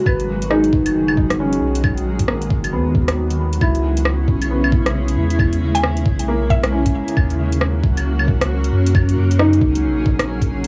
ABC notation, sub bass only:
X:1
M:4/4
L:1/8
Q:"Swing 16ths" 1/4=135
K:C#dor
V:1 name="Sub bass" clef=bass
G,,,3 F,,,4 B,,,- | B,,, A,,,2 F,,, D,,4 | C,,3 B,,,4 E,,- | E,, D,,2 B,,,4 z |
D,,3 C,,4 F,,- | F,, F,,2 C,, A,,,4 |]